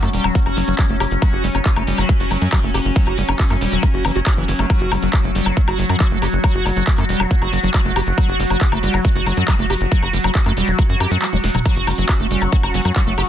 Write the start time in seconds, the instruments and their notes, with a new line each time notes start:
Already playing: synth drone F#3 C#4
0.03 analog synth bass F#2, acid bass A3, clap, high woodblock
0.13 analog synth bass E1, acid bass G3, open hi-hat
0.24 analog synth bass E1, acid bass F#3, closed hi-hat, high woodblock
0.35 acid bass F#3, kick, closed hi-hat
0.46 analog synth bass F#1, acid bass F#4, high woodblock
0.57 analog synth bass F#1, acid bass F#3, open hi-hat
0.68 analog synth bass F#1, acid bass F#3, closed hi-hat
0.79 acid bass F#3, kick, clap, closed hi-hat, high woodblock
0.90 analog synth bass F#1, acid bass A3
1.00 analog synth bass F#1, acid bass G4, open hi-hat, high woodblock
1.11 analog synth bass F#1, closed hi-hat
1.22 acid bass F#3, kick, closed hi-hat, high woodblock
1.33 analog synth bass F#1, acid bass F#4
1.44 analog synth bass F#1, acid bass G3, open hi-hat
1.55 analog synth bass F#1, acid bass C#4, closed hi-hat, high woodblock
1.66 kick, clap, closed hi-hat
1.76 analog synth bass F#1, acid bass A3, high woodblock
1.87 analog synth bass F#1, acid bass G3, open hi-hat
1.98 analog synth bass F#1, acid bass F#3, closed hi-hat, high woodblock
2.09 acid bass F#3, kick, closed hi-hat
2.20 analog synth bass F#1, acid bass F#4, open hi-hat
2.31 analog synth bass F#1, acid bass F#3, open hi-hat, high woodblock
2.42 analog synth bass F#2, acid bass F#3, closed hi-hat
2.53 acid bass F#3, kick, clap, closed hi-hat, high woodblock
2.63 analog synth bass F#1, acid bass A3
2.74 analog synth bass F#1, acid bass G4, open hi-hat, high woodblock
2.85 analog synth bass F#1, closed hi-hat
2.96 acid bass F#3, kick, closed hi-hat
3.07 analog synth bass F#1, acid bass F#4, high woodblock
3.18 analog synth bass F#1, acid bass G3, open hi-hat
3.29 analog synth bass F#1, acid bass C#4, closed hi-hat, high woodblock
3.39 kick, clap, closed hi-hat
3.50 analog synth bass F#2, acid bass A3, clap, high woodblock
3.61 analog synth bass E1, acid bass G3, open hi-hat
3.72 analog synth bass E1, acid bass F#3, closed hi-hat
3.83 acid bass F#3, kick, closed hi-hat, high woodblock
3.94 analog synth bass F#1, acid bass F#4
4.05 analog synth bass F#1, acid bass E3, open hi-hat, high woodblock
4.16 analog synth bass F#1, acid bass F#4, closed hi-hat
4.26 acid bass F#4, kick, clap, closed hi-hat, high woodblock
4.37 analog synth bass F#1, acid bass E3
4.48 analog synth bass F#1, acid bass E3, open hi-hat
4.59 analog synth bass F#1, acid bass A3, closed hi-hat, high woodblock
4.70 acid bass F#3, synth drone F#4, kick, closed hi-hat, high woodblock
4.81 analog synth bass F#1, acid bass F#4
4.92 analog synth bass F#1, acid bass G3, open hi-hat, high woodblock
5.03 analog synth bass F#1, acid bass F#3, closed hi-hat
5.13 kick, clap, closed hi-hat, high woodblock
5.24 analog synth bass F#1, acid bass A3
5.35 analog synth bass F#1, acid bass G3, open hi-hat
5.46 analog synth bass F#1, acid bass F#3, closed hi-hat, high woodblock
5.57 acid bass F#3, kick, closed hi-hat
5.68 analog synth bass F#1, acid bass F#4, open hi-hat, high woodblock
5.79 analog synth bass F#1, acid bass F#3, open hi-hat
5.89 analog synth bass F#2, acid bass F#3, closed hi-hat, high woodblock
6.00 acid bass F#3, kick, clap, closed hi-hat
6.11 analog synth bass F#1, acid bass A3
6.22 analog synth bass F#1, acid bass G4, open hi-hat, high woodblock
6.33 analog synth bass F#1, closed hi-hat
6.44 acid bass F#3, kick, closed hi-hat, high woodblock
6.55 analog synth bass F#1, acid bass F#4
6.66 analog synth bass F#1, acid bass G3, open hi-hat, high woodblock
6.76 analog synth bass F#1, acid bass F#3, closed hi-hat
6.87 kick, clap, closed hi-hat
6.98 analog synth bass F#2, acid bass A3, clap, high woodblock
7.09 analog synth bass E1, acid bass G3, open hi-hat
7.20 analog synth bass E1, acid bass F#3, closed hi-hat, high woodblock
7.31 acid bass F#3, kick, closed hi-hat
7.42 analog synth bass F#1, acid bass F#4, high woodblock
7.52 analog synth bass F#1, acid bass F#3, open hi-hat
7.63 analog synth bass F#1, acid bass F#3, closed hi-hat
7.74 acid bass F#3, kick, clap, closed hi-hat, high woodblock
7.85 analog synth bass F#1, acid bass A3
7.96 analog synth bass F#1, acid bass G4, open hi-hat, high woodblock
8.07 analog synth bass F#1, closed hi-hat
8.18 acid bass F#3, kick, closed hi-hat, high woodblock
8.29 analog synth bass F#1, acid bass F#4
8.39 analog synth bass F#1, acid bass G3, open hi-hat
8.50 analog synth bass F#1, acid bass F#3, closed hi-hat, high woodblock
8.61 kick, clap, closed hi-hat
8.72 analog synth bass F#1, acid bass A3, high woodblock
8.83 analog synth bass F#1, acid bass G3, open hi-hat
8.94 analog synth bass F#1, acid bass F#3, closed hi-hat, high woodblock
9.05 kick, closed hi-hat
9.16 analog synth bass F#1, acid bass F#4, open hi-hat
9.26 analog synth bass F#1, acid bass F#3, open hi-hat, high woodblock
9.37 analog synth bass F#2, acid bass F#3, closed hi-hat
9.48 acid bass F#3, kick, clap, closed hi-hat, high woodblock
9.59 analog synth bass F#1, acid bass A3
9.70 analog synth bass F#1, acid bass G4, open hi-hat, high woodblock
9.81 analog synth bass F#1, closed hi-hat
9.92 acid bass F#3, kick, closed hi-hat
10.02 analog synth bass F#1, acid bass F#4, high woodblock
10.13 analog synth bass F#1, acid bass G3, open hi-hat
10.24 analog synth bass F#1, acid bass F#3, closed hi-hat, high woodblock
10.35 kick, clap, closed hi-hat
10.46 analog synth bass F#2, acid bass A3, clap, high woodblock
10.57 analog synth bass E1, acid bass G3, open hi-hat
10.68 analog synth bass E1, acid bass F#3, closed hi-hat
10.79 acid bass F#3, kick, closed hi-hat, high woodblock
10.89 analog synth bass F#2, acid bass F#4
11.00 analog synth bass F#2, acid bass G4, open hi-hat, high woodblock
11.11 analog synth bass F#2, acid bass F#3, open hi-hat
11.22 acid bass F#3, clap, closed hi-hat, high woodblock
11.33 analog synth bass E1, acid bass F#3, high tom
11.44 analog synth bass E1, snare, open hi-hat
11.55 analog synth bass E1, acid bass F#3, closed hi-hat, mid tom, high woodblock
11.66 acid bass F#3, synth drone F#3 C#4, string section C#4, kick, closed hi-hat, crash, high woodblock
11.76 analog synth bass F#1, acid bass F#4
11.81 string section F#4
11.87 analog synth bass F#1, acid bass G3, open hi-hat, high woodblock
11.98 analog synth bass F#1, acid bass F#3, closed hi-hat
12.07 string section F#5, kick, clap, closed hi-hat, high woodblock
12.20 analog synth bass F#1, acid bass A3, string section C#6
12.31 analog synth bass F#1, acid bass G3, open hi-hat
12.42 analog synth bass F#1, acid bass F#3, closed hi-hat, high woodblock
12.52 acid bass F#3, kick, closed hi-hat
12.63 analog synth bass F#1, acid bass F#4, high woodblock
12.74 analog synth bass F#1, acid bass F#3, open hi-hat
12.85 analog synth bass F#2, acid bass F#3, closed hi-hat, high woodblock
12.96 acid bass F#3, kick, clap, closed hi-hat
13.07 analog synth bass F#1, acid bass A3
13.18 analog synth bass F#1, acid bass G4, open hi-hat, high woodblock